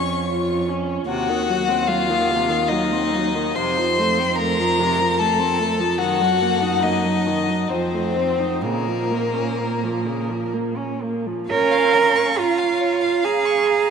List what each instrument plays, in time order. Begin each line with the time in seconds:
Already playing: cello F2, viola C#4, violin C#5 C#6
0.28 viola F4
0.69 viola C#4
1.08 cello D#2, viola C3, violin F#4 F#5
1.29 viola D#3
1.50 viola F#3
1.69 viola C4
1.87 viola F#3, violin F4 F5
2.09 viola D#3
2.31 viola C3
2.49 viola D#3
2.68 viola F#3, violin D#4 D#5
2.92 viola C4
3.13 viola F#3
3.35 viola D#3
3.55 cello F2, viola C3, violin C5 C6
3.78 viola F3
3.99 viola A3
4.18 viola C4
4.36 viola A3, violin A#4 A#5
4.59 viola F3
4.80 viola C3
5.00 viola F3
5.18 viola A3, violin A4 A5
5.40 viola C4
5.59 viola A3
5.79 viola F3
5.99 cello F#2, viola D#3, violin F#4 F#5
6.21 viola F#3
6.42 viola A#3
6.62 viola D#4
6.81 viola A#3, violin D#4 D#5
7.05 viola F#3
7.27 viola D#3
7.49 viola F#3
7.69 cello F2, viola F3, violin C4 C5
7.94 viola A3
8.17 viola C4
8.39 viola D#4
8.62 cello A#2, viola C#3, violin A#3 A#4
8.88 viola F3
9.11 viola A#3
9.35 viola C#4
9.59 viola A#3
9.83 viola F3
10.06 viola C#3
10.30 viola F3
10.53 viola A#3
10.77 viola C#4
11.02 viola A#3
11.26 viola F3
11.49 viola C#4, cello A#4, violin C#5 F5
11.72 violin F5
11.94 violin A#5
12.16 violin C#6
12.36 cello F4, violin A#5
12.58 violin F5
12.80 violin C#5
13.01 violin F5
13.24 cello G#4, violin A#5
13.45 violin C#6
13.67 violin A#5